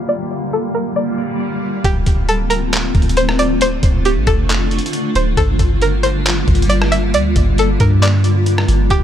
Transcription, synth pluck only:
0.09 0.50 D5 loud
0.53 0.74 A4 medium
0.75 0.95 A#4 medium
0.96 1.38 D5 medium
1.85 2.26 G4 loud
2.29 2.50 A4 medium
2.50 2.71 A#4 medium
3.17 3.38 C5 medium
3.39 3.60 D5 medium
3.62 4.03 C5 loud
4.05 4.26 G4 medium
4.27 4.48 A4 medium
5.16 5.37 C5 loud
5.37 5.79 A4 loud
5.82 6.03 A#4 medium
6.03 6.24 C5 medium
6.69 6.91 D5 medium
6.92 7.13 E5 medium
7.14 7.56 D5 loud
7.59 7.80 A4 medium
7.80 8.01 A#4 medium
8.02 8.44 D5 medium
8.91 9.04 G4 loud

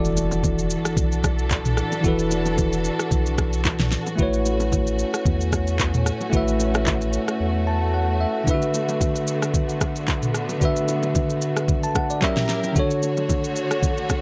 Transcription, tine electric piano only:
0.00 1.99 E3 medium
0.00 2.00 E4 medium
0.00 2.00 F#4 medium
0.00 2.01 A4 medium
0.00 2.02 D5 medium
2.01 4.13 E3 medium
2.01 4.14 E4 medium
2.01 4.15 F#4 medium
2.06 4.16 A4 medium
2.06 4.17 B4 medium
4.16 6.27 A3 medium
4.16 6.28 E4 medium
4.16 6.29 F#4 medium
4.21 6.30 B4 medium
4.21 6.31 C#5 medium
6.30 8.42 A3 medium
6.30 8.42 E4 medium
6.30 8.43 F#4 medium
6.35 8.44 B4 medium
6.35 8.19 E5 medium
7.67 7.92 A5 medium
7.94 8.19 F#5 medium
8.21 8.45 E5 medium
8.44 10.56 D3 medium
8.44 10.57 D4 medium
8.44 8.54 E4 medium
8.49 10.58 B4 medium
8.49 10.59 E5 medium
8.54 10.60 F#4 medium
10.58 12.17 D3 medium
10.58 12.18 D4 medium
10.58 12.19 F#4 medium
10.63 12.20 B4 medium
10.63 11.42 E5 medium
11.84 11.95 A5 medium
11.96 12.09 F#5 medium
12.10 12.36 D5 medium
12.21 12.75 F#3 medium
12.21 12.75 C#4 medium
12.21 12.76 G4 medium
12.21 12.76 A#4 medium
12.21 12.77 E5 medium
12.73 14.21 D3 medium
12.73 14.21 D4 medium
12.73 14.21 F#4 medium
12.78 14.21 A4 medium
12.78 14.21 C#5 medium

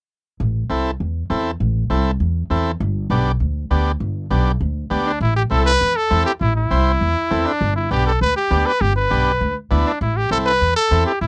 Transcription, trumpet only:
5.06 5.20 D4 medium
5.21 5.35 E4 medium
5.36 5.43 G4 medium
5.51 5.65 A4 medium
5.66 5.98 B4 loud
5.96 6.25 A4 loud
6.26 6.33 G4 medium
6.41 6.55 E4 medium
6.56 7.48 E4 medium
7.46 7.75 D4 medium
7.76 7.90 E4 medium
7.92 8.05 G4 medium
8.07 8.20 A4 medium
8.21 8.35 B4 loud
8.36 8.68 G4 medium
8.66 8.82 B4 medium
8.81 8.95 G4 medium
8.96 9.55 B4 medium
9.86 10.00 D4 medium
10.01 10.18 E4 medium
10.16 10.31 G4 medium
10.31 10.38 A4 medium
10.46 10.74 B4 loud
10.76 11.04 A4 medium
11.06 11.20 G4 medium
11.21 11.27 E4 medium

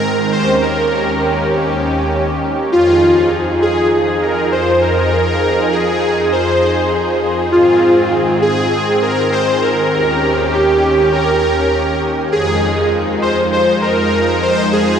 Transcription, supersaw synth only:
0.00 0.28 A#4 loud
0.32 0.63 C5 loud
0.62 1.48 A#4 loud
2.72 3.28 F4 loud
3.62 4.24 G#4 loud
4.22 4.53 A#4 loud
4.52 4.80 C5 loud
4.82 5.75 A#4 loud
5.72 6.28 G#4 loud
6.32 7.18 C5 loud
7.52 8.08 F4 loud
8.42 9.04 G#4 loud
9.02 9.33 A#4 loud
9.32 9.60 C5 loud
9.62 10.55 A#4 loud
10.52 11.14 G4 medium
11.12 11.98 A#4 medium
12.32 12.88 G#4 loud
13.22 13.36 C5 loud
13.52 13.83 C5 loud
13.82 14.44 A#4 loud
14.42 14.73 C5 loud
14.72 14.99 G#4 loud

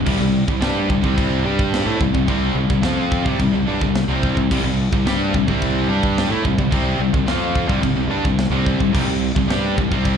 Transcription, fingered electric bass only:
0.06 0.19 C2 medium
0.20 0.46 C2 medium
0.48 0.61 C2 medium
0.62 0.88 G2 loud
0.89 1.02 C2 medium
1.03 1.42 C2 loud
1.45 1.83 G2 loud
1.86 1.99 A2 loud
2.00 2.13 C2 medium
2.14 2.27 C2 medium
2.28 2.54 C2 medium
2.55 2.68 C2 medium
2.70 2.82 C2 medium
2.83 3.22 F2 loud
3.26 3.38 C2 loud
3.39 3.52 C2 medium
3.54 3.66 C2 medium
3.67 3.80 G2 loud
3.82 4.07 C2 medium
4.08 4.34 C2 loud
4.37 4.49 C2 medium
4.51 4.63 C2 medium
4.64 4.89 C2 medium
4.92 5.05 C2 medium
5.06 5.31 G2 medium
5.34 5.47 C2 medium
5.48 5.86 C2 medium
5.88 6.27 G2 loud
6.29 6.43 A2 loud
6.45 6.57 C2 medium
6.58 6.71 C2 medium
6.72 6.98 C2 medium
6.99 7.12 C2 medium
7.14 7.25 C2 medium
7.26 7.65 F2 medium
7.69 7.82 C2 medium
7.83 7.94 C2 medium
7.95 8.07 C2 medium
8.08 8.22 G2 loud
8.25 8.50 C2 medium
8.50 8.77 C2 loud
8.80 8.93 C2 medium
8.94 9.07 C2 loud
9.08 9.33 C2 medium
9.36 9.48 C2 medium
9.48 9.75 G2 loud
9.78 9.90 C2 medium
9.91 10.17 C2 loud

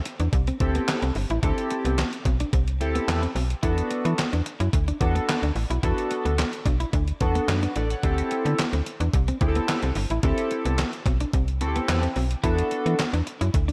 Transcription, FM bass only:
0.20 0.29 E2 medium
0.33 0.52 C2 loud
0.60 0.79 D2 medium
1.02 1.11 C2 medium
1.15 1.26 G1 medium
1.30 1.39 A1 medium
1.43 1.53 D2 loud
1.85 2.04 C2 medium
2.25 2.44 B1 loud
2.53 2.82 C2 medium
2.81 3.00 D2 medium
3.08 3.27 E2 medium
3.35 3.55 B1 medium
3.63 3.82 E2 loud
4.05 4.14 E3 loud
4.33 4.42 E2 medium
4.60 4.69 F#2 medium
4.73 4.92 D2 loud
5.01 5.20 E2 loud
5.43 5.52 D2 medium
5.55 5.66 A1 medium
5.70 5.79 B1 medium
5.83 5.93 E2 loud
6.25 6.45 D2 medium
6.66 6.85 B1 loud
6.93 7.12 D2 loud
7.21 7.40 E2 medium
7.48 7.67 F#2 medium
7.76 7.95 A1 medium
8.03 8.23 D2 loud
8.45 8.54 D3 medium
8.73 8.82 D2 medium
9.00 9.09 E2 medium
9.13 9.33 C2 loud
9.41 9.60 D2 loud
9.83 9.92 C2 medium
9.96 10.06 G1 loud
10.10 10.19 A1 medium
10.23 10.34 D2 loud
10.65 10.85 C2 medium
11.06 11.25 B1 medium
11.33 11.62 C2 loud
11.61 11.80 D2 medium
11.89 12.08 E2 medium
12.16 12.35 B1 medium
12.44 12.63 E2 loud
12.86 12.95 E3 medium
13.13 13.22 E2 medium
13.41 13.50 F#2 medium
13.54 13.72 D2 medium

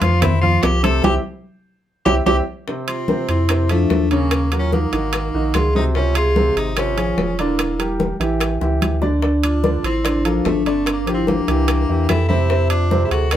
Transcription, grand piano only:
0.01 0.18 F3 medium
0.01 0.18 F4 medium
0.01 0.19 F5 medium
0.21 0.38 C4 medium
0.21 0.38 C5 medium
0.21 0.39 C6 medium
0.42 0.76 F3 medium
0.42 0.76 F4 medium
0.42 0.76 F5 medium
0.83 1.00 C3 loud
0.83 1.00 C4 medium
0.83 1.00 C5 medium
1.03 1.17 C4 medium
1.03 1.17 E4 medium
1.03 1.17 G4 medium
2.06 2.19 C4 medium
2.06 2.19 E4 loud
2.06 2.19 G4 medium
2.27 2.40 C4 medium
2.27 2.40 E4 medium
2.27 2.40 G4 loud
2.68 3.01 C3 medium
2.68 3.02 C4 medium
2.68 3.02 C5 medium
3.09 3.42 C3 medium
3.09 3.43 C4 medium
3.09 3.43 C5 medium
3.49 3.66 C3 medium
3.49 3.66 C4 medium
3.49 3.66 C5 medium
3.70 4.03 F3 medium
3.70 4.04 E4 medium
3.70 4.04 F4 medium
4.11 4.44 C#3 medium
4.11 4.45 C#4 medium
4.11 4.45 C#5 medium
4.52 4.86 F#3 medium
4.52 4.86 F#4 medium
4.52 4.86 A#4 medium
4.92 5.26 D#3 medium
4.92 5.26 D#4 medium
4.92 5.26 F#4 medium
5.34 5.68 D#3 medium
5.34 5.68 D#4 medium
5.34 5.68 F#4 medium
5.75 5.91 C3 medium
5.75 5.92 C4 medium
5.75 5.92 C5 medium
5.96 6.29 C3 medium
5.96 6.29 C4 medium
5.96 6.29 C5 medium
6.37 6.70 C3 medium
6.37 6.70 C4 medium
6.37 6.70 C5 medium
6.77 6.94 C3 medium
6.77 6.94 C4 medium
6.77 6.94 C5 medium
6.97 7.31 F3 medium
6.97 7.31 F4 medium
6.97 7.31 G#4 medium
7.39 7.72 D3 medium
7.39 7.72 D4 medium
7.39 7.73 D5 medium
7.79 8.13 G3 medium
7.79 8.13 G4 medium
7.79 8.13 A#4 medium
8.20 8.54 E3 medium
8.20 8.54 E4 medium
8.20 8.54 G4 medium
8.61 8.94 E3 medium
8.61 8.95 E4 medium
8.61 8.95 G4 medium
9.02 9.18 D3 medium
9.02 9.18 D4 medium
9.02 9.19 D5 medium
9.22 9.56 D3 medium
9.22 9.56 D4 medium
9.22 9.56 D5 medium
9.63 9.97 D3 medium
9.63 9.97 D4 medium
9.63 9.97 D5 medium
10.04 10.21 D3 medium
10.04 10.21 D4 medium
10.04 10.21 D5 medium
10.24 10.58 F3 medium
10.24 10.58 F4 medium
10.24 10.58 A4 medium
10.66 10.99 D3 medium
10.66 11.00 D4 medium
10.66 11.00 D5 medium
11.06 11.40 F3 medium
11.06 11.40 F4 medium
11.06 11.40 G4 medium
11.48 11.81 E3 medium
11.48 11.81 E4 medium
11.48 11.82 G4 medium
11.89 12.22 E3 medium
11.89 12.22 E4 medium
11.89 12.23 G4 medium
12.29 12.46 C3 medium
12.29 12.46 C4 medium
12.29 12.46 C5 medium
12.50 12.83 C3 medium
12.50 12.84 C4 medium
12.50 12.84 C5 medium
12.91 13.24 C3 medium
12.91 13.24 C4 medium
12.91 13.25 C5 medium
13.33 13.37 D3 medium
13.33 13.37 D4 medium
13.33 13.37 D5 medium

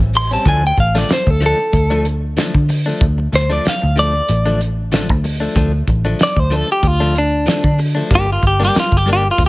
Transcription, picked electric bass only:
0.00 0.36 A1 medium
0.46 0.71 D2 loud
0.78 1.03 A1 medium
1.27 1.52 D2 medium
1.73 2.37 D2 loud
2.55 2.91 D3 medium
3.01 3.26 D2 medium
3.33 3.58 D2 medium
3.66 muted picked electric bass stroke soft
3.83 4.19 D2 medium
4.29 5.10 A1 medium
5.10 5.46 D2 medium
5.56 5.81 D2 loud
5.87 6.13 A1 medium
6.36 6.62 D2 medium
6.83 7.47 D2 medium
7.64 8.01 D3 medium
8.11 8.36 G1 medium
8.43 8.68 G1 medium
8.76 muted picked electric bass stroke soft
8.92 9.29 G1 medium
9.38 9.49 D2 medium

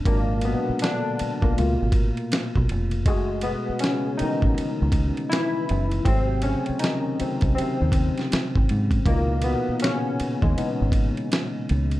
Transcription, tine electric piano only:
0.06 0.42 A#2 medium
0.06 1.15 F#3 medium
0.06 1.15 G#3 medium
0.06 0.41 A#3 loud
0.06 0.81 D4 medium
0.45 0.80 B2 medium
0.45 0.79 B3 loud
0.82 1.39 D3 medium
0.82 1.44 D4 loud
1.42 2.65 A#2 medium
1.42 2.64 A#3 medium
1.57 2.65 B2 medium
1.57 2.65 A3 medium
1.57 2.66 F4 medium
3.06 4.18 G#3 medium
3.06 4.18 A3 medium
3.06 6.03 F#4 medium
3.06 3.24 G#4 medium
3.43 3.79 B2 medium
3.43 3.78 B3 loud
3.80 4.17 C#3 medium
3.80 4.19 C#4 loud
4.17 5.28 D#3 medium
4.17 4.53 E3 medium
4.17 4.52 G#3 medium
4.17 4.53 A3 soft
4.17 5.34 D#4 loud
5.29 5.88 E3 medium
5.29 5.87 E4 loud
6.05 6.42 C3 medium
6.05 6.59 F#3 medium
6.05 6.60 A3 medium
6.05 6.07 C4 loud
6.05 6.60 C4 medium
6.43 6.79 C#3 medium
6.43 6.78 C#4 loud
6.79 7.52 D#3 medium
6.79 7.57 D#4 medium
7.20 7.53 F#3 medium
7.20 7.53 A3 soft
7.20 7.53 C4 medium
7.55 8.28 C3 medium
7.55 8.26 C4 medium
9.06 9.42 A#2 medium
9.06 9.45 B2 medium
9.06 9.60 E3 medium
9.06 9.45 A#3 loud
9.06 9.60 D#4 medium
9.44 9.79 B2 medium
9.44 9.82 B3 loud
9.82 10.39 C#3 medium
9.82 10.44 C#4 loud
10.42 11.65 G#3 medium
10.42 11.66 G#4 medium
10.57 10.90 E3 soft
10.57 10.90 B3 medium
10.57 10.91 D#4 medium

